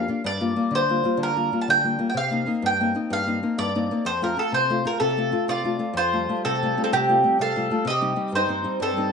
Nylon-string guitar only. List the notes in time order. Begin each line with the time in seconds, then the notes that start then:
0.08 A#3 D4 F4
0.24 G2
0.41 G3 A#3 F4
0.56 G3 A#3 F4
0.71 D3
0.89 G3 A#3 F4
1.04 G3 A#3 F4
1.17 D3
1.36 G3 A#3 F4
1.52 G3 A#3 F4
1.68 D3
1.84 G3 A#3 F4
1.99 G3 A#3 F4
2.14 C3
2.31 A#3 C4 D#4
2.46 A#3 C4 D#4
2.62 G2
2.80 A#3 C4 D#4
2.95 A#3 C4 D#4
3.10 G2
3.27 A#3 C4 D#4
3.43 A#3 C4 D#4
3.58 G2
3.75 A#3 C4 D#4
3.91 A#3 C4 D#4
4.05 F2
4.22 A3 C4 F4
4.36 A3 C4 F4
4.52 C3
4.70 A3 C4 F4
4.85 A3 C4 F4
5.00 C3
5.17 A3 C4 F4
5.32 A3 C4 F4
5.48 C3
5.64 A3 C4 F4
5.79 A3 C4 F4
5.94 F2
6.13 G3 A3 F4
6.29 G3 A3 F4
6.45 C3
6.63 G3 A3 F4
6.77 G3 A3 F4
6.93 C3
7.09 G3 A3 F4
7.23 G3 A3 F4
7.39 C3
7.56 G3 A3 F4
7.70 G3 A3 F4
7.85 C3
8.01 G3 C4 D#4
8.16 G3 C4 D#4
8.32 G2
8.49 G3 C4 D#4
8.64 G3 C4 D#4
8.80 G2
8.97 G3 C4 D#4